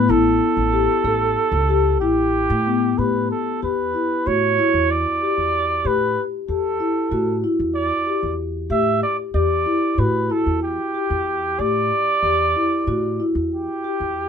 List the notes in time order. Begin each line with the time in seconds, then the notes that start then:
Already playing: B4
0.09 A1 E4 A4
0.57 A1
0.72 G4
1.04 A1 A4
1.52 C#2
1.69 G4
2.00 A1 E4 G4
2.50 A2
2.67 B3
2.98 A2 G4 B4
3.31 A4
3.62 E2 G4 B4
3.94 E4
4.26 A2 F#4 C#5
4.58 E4
4.74 E2
4.91 D5
5.22 G4
5.38 E2
5.85 A2 G4 B4
6.49 E2 G4 A4
6.80 E4
7.12 A2 F#4
7.44 E4
7.59 E2
7.75 D5
8.07 G4
8.23 E2
8.70 A2 G4 E5
9.03 D5
9.34 E2 G4 D5
9.66 E4
9.98 A2 F#4 B4
10.30 E4 A4
10.46 E2
10.63 G4
10.94 G4
11.10 E2
11.59 A2 G4 D5
12.23 E2 G4
12.56 E4
12.87 A2 F#4
13.20 E4
13.35 E2
13.54 G4
13.84 G4
14.00 E2